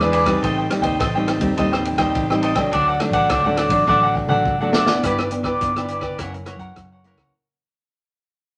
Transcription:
Already playing: E2 G#3
0.00 D4 E4 G#4 B4 D5, cross-stick
0.12 E4 G#4 B4 D5, ride
0.25 G3 C4 D#4 G#4 B4 D5, kick, cross-stick, ride
0.43 A1 A2 A4 C5 D#5 G5, kick, ride
0.57 C5 D#5 G5
0.70 G3 C4 D#4, muted cavaquinho stroke, cross-stick, ride
0.81 D#2 C5 D#5 G5, kick, ride
0.99 A1 A2 A4 C5 D#5 G5, kick, cross-stick, ride
1.15 G3 C4 D#4 C5 D#5 G5
1.27 A4 C5 D#5 G5, cross-stick, ride
1.38 D#2 G3 C4 D#4, kick, ride
1.57 D#2 A2 G3 C4 D#4 A4 C5 D#5 G5, kick, ride
1.72 C5 D#5 G5, cross-stick
1.85 muted cavaquinho stroke, ride
1.95 D#2 G3 C4 D#4 D#5 G5, kick, cross-stick, ride
2.00 C5
2.15 A1 A2, kick, ride
2.30 G3 C4 D#4 C5 D#5 G5, cross-stick
2.42 A4 C5 D#5 G5, ride
2.55 F#3 A3 D4 C5 D#5 G5, kick, cross-stick, ride
2.72 D2 D3 D4 A4 D5 F#5, kick, ride
2.88 A4 D5 F#5
3.00 F#3 A3 D4, muted cavaquinho stroke, cross-stick, ride
3.10 A1 D5 F#5, kick, ride
3.15 A4
3.29 D2 A2 D4 A4 D5 F#5, kick, cross-stick, ride
3.44 F#3 A3 D4 A4 D5 F#5
3.56 D4 A4 D5 F#5, cross-stick, ride
3.68 A1 F#3 A3, kick, ride
3.72 D4
3.87 A1 D3 F#3 A3 D4 A4 D5 F#5, kick, high tom
4.03 A4 D5 F#5
4.15 muted cavaquinho stroke, kick
4.28 A1 F#3 A3 D4 A4 D5 F#5, mid tom
4.45 G#1, kick
4.61 F#3 A3 D4 A4 D5 F#5
4.73 D4 A4 D5 F#5, snare
4.86 E3 B3 D4 A4 D5 F#5, snare
5.03 G1 G2 E4 G4 B4 D5, kick, cross-stick, closed hi-hat
5.19 G4 B4 D5, cross-stick
5.31 E3 B3 D4, muted cavaquinho stroke, closed hi-hat
5.43 G4 B4 D5, kick, cross-stick
5.61 G1 D3 E3 B3 D4, kick, closed hi-hat
5.76 E3 B3 D4 G4 B4 D5, cross-stick, closed hi-hat
5.88 E4 G4 B4 D5, closed hi-hat
6.01 G4 B4 D5, kick, cross-stick
6.18 F#1 F#2 E3 A#3 C#4 E4 A#4 C#5 F#5, kick, cross-stick, closed hi-hat
6.34 muted cavaquinho stroke, closed hi-hat
6.45 E3 A#3 C#4 E4 A#4 C#5 F#5, cross-stick, closed hi-hat
6.57 F#2 C#5 F#5, kick, closed hi-hat
6.61 A#4
6.76 F#2 C#3, kick, cross-stick, closed hi-hat
6.92 A#4 C#5 F#5
7.04 E3 A#3 C#4 E4 A#4 C#5 F#5, closed hi-hat
7.15 C#2 F#5, kick, cross-stick, closed hi-hat
7.19 A#4 C#5

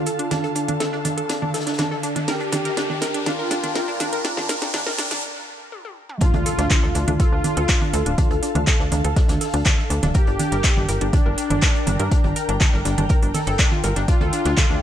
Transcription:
Already playing: D3 D4 F4 A4 F5 A5, riser
0.06 A4, closed hi-hat, open hi-hat
0.19 D4, closed hi-hat
0.31 D4, snare, closed hi-hat, low conga
0.44 A4, closed hi-hat
0.55 D4, closed hi-hat, open hi-hat
0.68 D4, closed hi-hat, low conga
0.80 A4, snare, closed hi-hat
0.92 D4, snare
1.04 D4, snare, closed hi-hat, open hi-hat, low conga
1.18 A4, closed hi-hat
1.29 D4, snare, closed hi-hat
1.42 D4, low conga
1.54 A4, snare, closed hi-hat, open hi-hat
1.60 snare, closed hi-hat
1.67 D4, snare, closed hi-hat
1.72 snare, closed hi-hat
1.78 D4, snare, closed hi-hat, low conga
1.91 A4, snare
2.03 D4, closed hi-hat, open hi-hat
2.16 D4, snare, closed hi-hat, low conga
2.28 G4 A#4, snare, closed hi-hat
2.37 D4 A#4, closed hi-hat
2.52 D4 G5, snare, closed hi-hat, open hi-hat, low conga
2.65 A#4, snare, closed hi-hat
2.77 D4, snare, closed hi-hat
2.90 D4, snare, low conga
3.01 A#4, snare, closed hi-hat, open hi-hat
3.14 D4, snare, closed hi-hat
3.19 A#5
3.26 D4 F4, snare, closed hi-hat, low conga
3.39 A#4
3.51 D4, snare, open hi-hat
3.64 D4, closed hi-hat, low conga
3.75 A#4, snare, closed hi-hat
3.88 D4, closed hi-hat
4.00 D4, snare, open hi-hat, low conga
4.13 A#4, closed hi-hat
4.24 D4, snare, closed hi-hat
4.37 D4, snare, closed hi-hat, low conga
4.49 A#4, snare, closed hi-hat, open hi-hat
4.62 D4, snare, closed hi-hat
4.74 D4, snare, closed hi-hat, low conga
4.86 A#4, snare
4.98 D4, snare, open hi-hat
5.11 D4, snare, closed hi-hat, low conga
5.72 high tom
5.85 high tom
6.09 mid tom
6.21 D4 F4, kick, closed hi-hat, impact
6.34 D2 D4, closed hi-hat, low conga
6.44 A4 F5, closed hi-hat, open hi-hat
6.50 A4
6.58 D2 D4, snare, closed hi-hat
6.70 D4, kick, snare, clap, closed hi-hat, low conga
6.83 D2 A4, snare
6.95 D2 D4, closed hi-hat, open hi-hat
7.08 D2 D4 A5, closed hi-hat, low conga
7.20 F4 A4, kick, closed hi-hat
7.32 D2 D4
7.44 D4, closed hi-hat, open hi-hat, low conga
7.57 D2 A4, closed hi-hat
7.69 D4, kick, snare, clap, closed hi-hat
7.82 D4, closed hi-hat, low conga
7.93 D2 A4, closed hi-hat, open hi-hat
8.06 D1 D4, closed hi-hat
8.18 D4, kick, closed hi-hat, low conga
8.31 D2 A4, closed hi-hat
8.43 D4, closed hi-hat, open hi-hat
8.55 D2 D4, closed hi-hat, low conga
8.67 A4, kick, snare, clap, closed hi-hat
8.80 D2 D4, snare
8.92 D2 D4, snare, closed hi-hat, open hi-hat, low conga
9.04 D2 A4, closed hi-hat
9.16 D4, kick, snare, closed hi-hat
9.28 D2 D4, snare, closed hi-hat, open hi-hat, low conga
9.41 A4, snare, open hi-hat
9.54 D2 D4, closed hi-hat
9.66 D4, kick, snare, clap, closed hi-hat, low conga
9.78 A4, snare
9.90 D2 D4, closed hi-hat, open hi-hat
10.03 D1 D4, snare, closed hi-hat, low conga
10.14 G4 A#4, kick, closed hi-hat
10.20 A#4
10.27 G1 D4, closed hi-hat
10.38 D4 G5, closed hi-hat, open hi-hat, low conga
10.52 G1 A#4, snare, closed hi-hat
10.63 D4, kick, snare, clap, closed hi-hat
10.77 G1 D4, snare, low conga
10.89 G1 A#4, closed hi-hat, open hi-hat
11.01 G1 D4, closed hi-hat
11.13 D4, kick, closed hi-hat, low conga
11.19 A#5
11.26 G1 A#4
11.38 D4, closed hi-hat, open hi-hat
11.50 G1 D4, closed hi-hat, low conga
11.62 A#4, kick, snare, clap, closed hi-hat
11.75 D4, closed hi-hat
11.87 G1 D4, closed hi-hat, open hi-hat, low conga
12.00 G2 A#4, closed hi-hat
12.12 D4, kick, closed hi-hat
12.24 G1 D4, closed hi-hat, low conga
12.36 A#4, closed hi-hat, open hi-hat
12.49 G1 D4, closed hi-hat
12.60 D4, kick, snare, clap, closed hi-hat, low conga
12.73 G1 A#4, snare
12.85 G1 D4, snare, closed hi-hat, open hi-hat
12.98 G1 D4, closed hi-hat, low conga
13.09 A#4, kick, closed hi-hat
13.22 G1 D4, open hi-hat
13.34 A4, snare, open hi-hat, low conga
13.47 G1 A4, closed hi-hat
13.59 D4, kick, snare, clap, closed hi-hat
13.72 F4, snare, low conga
13.84 G1 A#4, closed hi-hat, open hi-hat
13.96 G1 D4, snare, closed hi-hat
14.08 D4 F4, kick, closed hi-hat
14.16 A4
14.21 D2 A4, closed hi-hat, low conga
14.33 D4, closed hi-hat, open hi-hat
14.45 D2 D4, snare, closed hi-hat
14.57 A4, kick, snare, clap, closed hi-hat, low conga
14.70 D2 D4, snare

